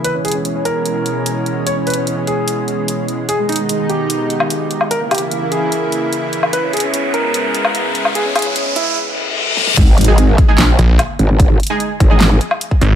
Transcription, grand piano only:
\new Staff \with { instrumentName = "Grand piano" } { \time 4/4 \key gis \minor \tempo 4 = 148 << { b'8 gis'8 r8 ais'2~ ais'8 | cis''8 b'8 r8 gis'2~ gis'8 | gis'8 dis'8 r8 g'2~ g'8 | ais'8 g'8 r8 gis'2~ gis'8 |
b'8 gis'8 r8 ais'2~ ais'8 | gis'8 gis'8 r8 e'8 r2 | r1 | r1 | } \\ { r16 cis'16 r16 cis'16 cis'16 cis'16 r2 r8 | r16 cis'16 r16 cis'16 cis'16 cis'16 r2 r8 | r16 gis16 r16 gis16 gis16 gis16 r2 r8 | r16 ais16 r16 ais16 ais16 ais16 r2 r8 |
r16 cis'16 r16 cis'16 cis'16 cis'16 r2 r8 | r16 cis'16 r16 cis'16 cis'16 cis'16 r2 r8 | r1 | r1 | } >> }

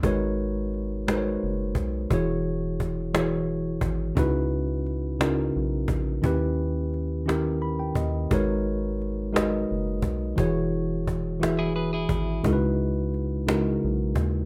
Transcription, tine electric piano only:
\new Staff \with { instrumentName = "Tine electric piano" } { \time 6/8 \key gis \minor \tempo 4. = 58 << { r2. | r2. | r2. | r2 b''16 g''16 dis''8 |
r2. | r2. | r2. | } \\ { <gis dis' fis' ais' b' cis''>4. <gis dis' fis' ais' b' bis' cis''>4. | <e e' fis' gis' cis''>4. <e e' fis' gis' cis''>4. | <cis cis' dis' e' fis' b'>4. <cis cis' dis' e' fis' ais'>4. | <dis cis' e' g' b'>4. <dis cis' e' g' ais'>4. |
<gis dis' fis' ais' b' cis''>4. <gis dis' fis' ais' b' dis''>4. | <e e' fis' gis' cis''>4. <e e' fis' gis' e''>4. | <cis gis dis' e' fis' ais' b'>4. <cis gis dis' e' fis' ais'>4. | } >> }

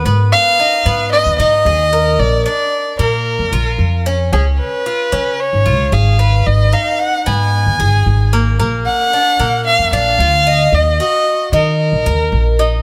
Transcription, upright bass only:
\new Staff \with { instrumentName = "Upright bass" } { \clef bass \time 4/4 \key aes \dorian \tempo 4 = 112 aes,8 r4 aes,8. ees,16 aes,8 ees,4 | bes,,8 r4 bes,8. f,16 bes,,8 f,4 | des,8 r4 des8. aes,,16 des,8 aes,,4 | aes,,8 r4 aes,8. ees,16 aes,,8 aes,,4 |
bes,,8 r4 bes,8. f,16 bes,,8 d,4 | ees,8 r4 ees8. bes,,16 ees,8 bes,,4 | }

